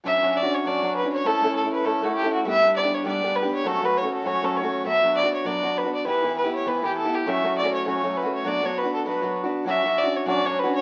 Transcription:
X:1
M:4/4
L:1/16
Q:"Swing" 1/4=200
K:D
V:1 name="Fiddle"
e3- e/2 e/2 d2 c2 d4 B2 c2 | A4 A2 B2 A2 F2 G2 F2 | e4 d2 c2 d4 B2 c2 | A2 B2 c2 A2 c2 A2 c4 |
e4 d2 c2 d4 B2 d2 | B4 B2 c2 B2 G2 A2 G2 | e4 d2 c2 c4 B2 c2 | d2 c2 B2 A2 B6 z2 |
e4 d2 c2 d2 c2 B2 c2 |]
V:2 name="Steel-string acoustic guitar"
[F,CDF]2 [F,CDF]3 [CDF]3 [F,CDF]2 [F,CDF]3 [CDF]3 | [A,CEA]2 [A,CEA]3 [A,CEA]3 [A,CEA]2 [A,CEA]3 [A,CEA]3 | [G,B,DG]2 [G,B,DG]3 [G,B,DG]3 [G,B,DG]2 [G,B,DG]3 [G,B,DG]3 | [F,A,CF]2 [F,A,CF]3 [F,A,CF]3 [F,A,CF]2 [F,A,CF]3 [F,A,CF]3 |
[F,B,DF]2 [F,B,DF]3 [B,DF]3 [F,B,DF]2 [F,B,DF]3 [B,DF]3 | [E,B,EG]2 [E,B,EG]3 [B,EG]3 [E,B,EG]2 [E,B,EG]3 [B,EG]3 | [F,A,CF]2 [F,A,CF]3 [F,A,CF]3 [F,A,CF]2 [F,A,CF]3 [F,A,CF]3 | [F,B,DF]2 [F,B,DF]3 [B,DF]3 [F,B,DF]2 [F,B,DF]3 [B,DF]3 |
[F,CDF]2 [F,CDF]3 [CDF]3 [F,CDF]2 [F,CDF]3 [CDF]3 |]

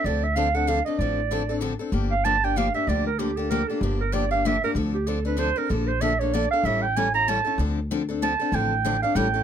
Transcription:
X:1
M:3/4
L:1/8
Q:"Swing" 1/4=191
K:Dm
V:1 name="Clarinet"
d e f ^f =f _e | d4 z2 | z f a g f e | d B G A B A |
G B d f e B | z G A =B c _B | A c e ^c d f | e g ^g b a2 |
z4 a2 | g3 f g2 |]
V:2 name="Steel-string acoustic guitar"
[D,F,CDA] z [D,F,CDA] [CDA] [D,F,CDA] [CDA] | [D,F,CDA] z [D,F,CDA] [CDA] [D,F,CDA] [CDA] | [D,F,B,DG] z [D,F,B,DG] [B,DG] [D,F,B,DG] [B,DG] | [D,F,B,DG] z [D,F,B,DG] [B,DG] [D,F,B,DG] [B,DG] |
[D,F,B,DG] z [D,F,B,DG] [B,DG] [D,F,B,DG] [B,DG] | [D,F,CDA] z [D,F,CDA] [CDA] [D,F,CDA] [CDA] | [D,F,B,DA] z [D,F,B,DA] [B,DA] [D,F,B,DA] [B,DA] | [E,G,^CEA] z [E,G,CEA] [CEA] [E,G,CEA] [CEA] |
[D,F,CDA] z [D,F,CDA] [CDA] [D,F,CDA] [CDA] | [D,F,CDA] z [D,F,CDA] [CDA] [E,G,^CEA] [CEA] |]
V:3 name="Upright bass" clef=bass
D,,6 | A,,,6 | G,,,6 | D,,6 |
G,,,6 | D,,6 | B,,,6 | A,,,6 |
D,,6 | A,,,4 A,,,2 |]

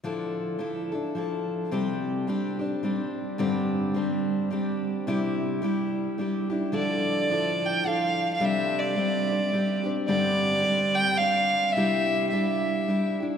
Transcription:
X:1
M:3/4
L:1/16
Q:"Swing" 1/4=108
K:Dm
V:1 name="Fiddle"
z12 | z12 | z12 | z12 |
d6 g2 f3 f | e2 d8 z2 | d6 g2 f4 | e4 e6 z2 |]
V:2 name="Steel-string acoustic guitar"
[D,F,DEA]4 [F,DEA]2 [DEA]2 [F,DEA]4 | [C,G,CDG]4 [G,CDG]2 [CDG]2 [G,CDG]4 | [G,,D,G,CDG]4 [G,CDG]4 [G,CDG]4 | [C,G,DEG]4 [G,DEG]4 [G,DEG]2 [DEG]2 |
[D,F,DEA]4 [F,DEA]4 [F,DA]4 | [C,G,CDG]4 [G,CDG]2 [CDG]2 [G,CDG]2 [CDG]2 | [G,,D,G,CDG]4 [G,CDG]4 [G,CDG]4 | [C,G,DEG]4 [G,DEG]4 [G,DEG]2 [DEG]2 |]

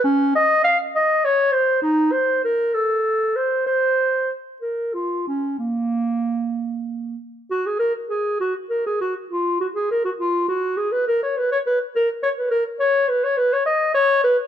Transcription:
X:1
M:12/8
L:1/16
Q:3/8=67
K:Bbm
V:1 name="Clarinet"
D2 e2 f2 e2 d2 c2 E2 c2 B2 =A4 c2 | c4 z2 B2 F2 D2 B,8- B,2 z2 | [K:Dbmix] G A B2 A2 G2 B A G2 F2 G A B G F2 G2 A c | B d c d c2 B2 d c B2 d2 c d c d e2 d2 c2 |]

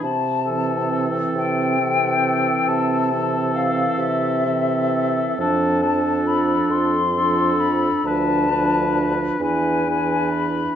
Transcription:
X:1
M:12/8
L:1/8
Q:3/8=45
K:Am
V:1 name="Flute"
a2 z g3 a2 f e3 | a2 b c'2 b a2 z ^g2 b |]
V:2 name="Oboe"
z A3 A3 A3 A2 | A A3 A2 B B2 B B2 |]
V:3 name="Clarinet"
z C3 C3 C3 C2 | D D3 D2 D D2 D D2 |]
V:4 name="French horn" clef=bass
z E,3 E,3 E,3 E,2 | F, F,3 F,2 F, F,2 E, E,2 |]
V:5 name="Bassoon" clef=bass
C,3 C,3 C,3 C,3 | F,,3 F,,3 D,,3 E,,3 |]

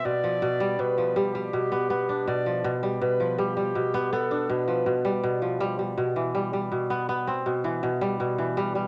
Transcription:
X:1
M:4/4
L:1/16
Q:1/4=81
K:C
V:1 name="Clarinet"
d4 B2 G6 d2 z2 | B2 G4 A2 B4 z4 | z16 |]
V:2 name="Kora" clef=bass
B,, F, B,, G, B,, F, G, G, B,, B, B, D B,, F, B,, G, | B,, F, G, G, B,, B, B, D B,, F, B,, G, B,, F, G, G, | B,, E, G, G, B,, B, B, C B,, E, B,, G, B,, E, G, G, |]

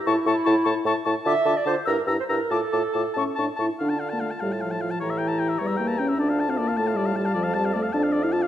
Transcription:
X:1
M:6/8
L:1/16
Q:3/8=101
K:Dm
V:1 name="Flute"
^c'2 c'2 c'2 c'2 c'2 c'2 | d'2 d'2 d'2 e'2 e'2 e'2 | d'2 d'2 d'2 ^c'2 c'2 c'2 | a12 |
b12 | a12- | a12 |]
V:2 name="Oboe"
a2 a2 a2 a2 a2 a2 | a2 a2 a2 b2 b2 b2 | a2 a2 a2 a2 a2 a2 | f a f a f a f a f a f a |
^c e g a g e c e g a g e | d f a f d f a f d f a f | d f a f d f a f d f a f |]
V:3 name="Clarinet"
E8- E2 z2 | e3 d c2 B3 c B2 | A8- A2 z2 | F12 |
G12 | F12 | A12 |]
V:4 name="French horn"
E2 E2 E2 E2 E2 E2 | F2 F2 F2 E2 E2 E2 | F2 F2 F2 ^C2 D2 E2 | D3 B, A,2 G,2 F,2 F,2 |
E,6 G,2 B,2 ^C2 | D3 C B,2 A,2 G,2 G,2 | F,2 G,2 A,2 D3 E F2 |]
V:5 name="Bassoon" clef=bass
A,,2 A,,2 A,,2 A,,2 A,,2 A,,2 | D,2 D,2 D,2 G,,2 G,,2 G,,2 | A,,2 A,,2 A,,2 A,,2 A,,2 A,,2 | D,6 A,,6 |
A,,6 E,,6 | D,,6 A,,6 | F,,6 F,,6 |]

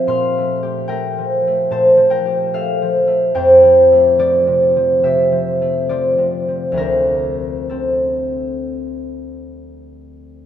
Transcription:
X:1
M:4/4
L:1/8
Q:1/4=71
K:Gm
V:1 name="Harp"
[GABdfbc']2 [Bg]2 [ca] [Bg] [Af]2 | [cg]2 [Fd]2 [G=e]2 [Fd]2 | [DB]2 [CA]6 |]
V:2 name="Harp" clef=bass
(3[B,,F,B,C] A, G (3A, F, A, (3B,, F, G (3A, F, A, | (3F,, F, A, (3F, C, F, (3C, F, A, (3F, C, F, | [D,,F,A,C]8 |]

